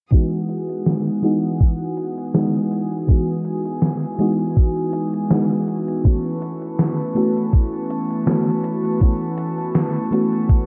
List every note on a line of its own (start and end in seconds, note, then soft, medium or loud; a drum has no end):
0.11 1.19 E3 medium
0.11 10.66 E3 medium
0.11 1.19 G#3 medium
0.11 1.19 B3 medium
0.11 1.20 D#4 medium
0.11 1.20 F#4 medium
0.11 6.01 G#4 medium
0.11 3.05 F#5 medium
0.11 6.01 D#6 medium
0.11 kick loud
0.11 closed hi-hat soft
0.33 closed hi-hat soft
0.49 closed hi-hat medium
0.69 closed hi-hat soft
0.86 snare loud
0.86 closed hi-hat soft
1.07 closed hi-hat soft
1.22 2.30 E3 medium
1.22 2.30 G#3 medium
1.22 2.31 B3 medium
1.22 2.31 D#4 medium
1.22 2.31 F#4 medium
1.22 closed hi-hat medium
1.44 closed hi-hat soft
1.60 kick loud
1.60 closed hi-hat soft
1.81 closed hi-hat soft
1.97 closed hi-hat medium
2.18 closed hi-hat soft
2.34 2.51 E3 medium
2.34 2.51 G#3 medium
2.34 2.51 B3 medium
2.34 2.51 D#4 medium
2.34 2.51 F#4 medium
2.34 snare loud
2.34 closed hi-hat soft
2.55 closed hi-hat soft
2.71 closed hi-hat medium
2.91 closed hi-hat soft
3.07 4.15 E3 medium
3.07 4.15 G#3 medium
3.07 4.16 B3 medium
3.07 4.16 D#4 medium
3.07 4.17 F#4 medium
3.07 6.02 G#5 medium
3.07 kick loud
3.07 closed hi-hat soft
3.28 closed hi-hat soft
3.45 closed hi-hat medium
3.65 closed hi-hat soft
3.82 snare loud
3.82 closed hi-hat soft
4.02 closed hi-hat soft
4.18 5.26 E3 medium
4.18 5.26 G#3 medium
4.18 5.27 B3 medium
4.18 5.27 D#4 medium
4.18 5.28 F#4 medium
4.18 closed hi-hat medium
4.39 closed hi-hat soft
4.56 kick loud
4.56 closed hi-hat medium
4.77 closed hi-hat soft
4.93 closed hi-hat medium
5.14 closed hi-hat soft
5.30 5.47 E3 medium
5.30 5.47 G#3 medium
5.30 5.47 B3 medium
5.30 5.47 D#4 medium
5.30 5.48 F#4 medium
5.30 snare loud
5.30 closed hi-hat soft
5.51 closed hi-hat soft
5.68 closed hi-hat medium
5.88 closed hi-hat soft
6.04 7.11 E3 medium
6.04 7.12 A3 medium
6.04 7.12 B3 medium
6.04 7.12 C#4 medium
6.04 7.13 F#4 medium
6.04 10.66 B4 medium
6.04 10.66 A5 medium
6.04 10.66 C#6 medium
6.04 kick loud
6.04 closed hi-hat soft
6.25 closed hi-hat soft
6.42 closed hi-hat medium
6.62 closed hi-hat soft
6.79 snare loud
6.79 closed hi-hat soft
6.99 closed hi-hat soft
7.15 8.22 E3 medium
7.15 8.23 A3 medium
7.15 8.23 B3 medium
7.15 8.24 C#4 medium
7.15 8.24 F#4 medium
7.15 closed hi-hat medium
7.37 closed hi-hat soft
7.53 kick loud
7.53 closed hi-hat soft
7.74 closed hi-hat soft
7.90 closed hi-hat medium
8.10 closed hi-hat soft
8.26 8.43 E3 medium
8.26 8.43 A3 medium
8.26 8.43 B3 medium
8.26 8.44 C#4 medium
8.26 8.44 F#4 medium
8.26 snare loud
8.26 closed hi-hat soft
8.47 closed hi-hat soft
8.64 closed hi-hat medium
8.85 closed hi-hat soft
9.00 10.08 E3 medium
9.00 10.08 A3 medium
9.00 10.08 B3 medium
9.00 10.09 C#4 medium
9.00 10.09 F#4 medium
9.00 kick loud
9.00 closed hi-hat soft
9.21 closed hi-hat soft
9.38 closed hi-hat medium
9.58 closed hi-hat soft
9.75 snare loud
9.75 closed hi-hat soft
9.96 closed hi-hat soft
10.10 10.66 E3 medium
10.10 10.66 A3 medium
10.10 10.66 B3 medium
10.10 10.66 C#4 medium
10.10 10.66 F#4 medium
10.10 closed hi-hat medium
10.33 closed hi-hat soft
10.49 kick loud
10.49 closed hi-hat soft